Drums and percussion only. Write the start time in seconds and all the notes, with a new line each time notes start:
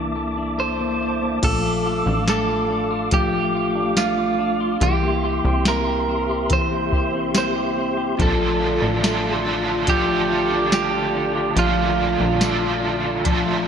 1.43 kick, closed hi-hat, crash
2.28 snare, closed hi-hat, tambourine
3.11 kick, closed hi-hat
3.97 snare, closed hi-hat, tambourine
4.81 closed hi-hat
5.65 snare, closed hi-hat, tambourine
6.50 kick, closed hi-hat
6.92 kick
7.35 snare, closed hi-hat, tambourine
8.19 kick, closed hi-hat
9.04 snare, closed hi-hat, tambourine
9.87 kick, closed hi-hat
10.72 snare, closed hi-hat, tambourine
11.57 closed hi-hat
12.41 snare, closed hi-hat, tambourine
13.25 kick, closed hi-hat